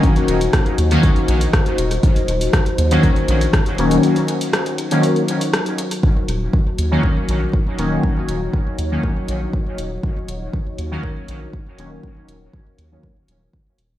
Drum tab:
HH |xxxxxxxxxxxxxxxx|xxxxxxxxxxxxxxxx|xxxxxxxxxxxxxxxx|--x---x---x---x-|
SD |----r-------r---|----r-------r---|----r-------r---|----------------|
BD |o---o---o---o---|o---o---o---o---|----------------|o---o---o---o---|

HH |--x---x---x---x-|--x---x---x---x-|--x---x---x---x-|
SD |----------------|----------------|----------------|
BD |o---o---o---o---|o---o---o---o---|o---o---o---o---|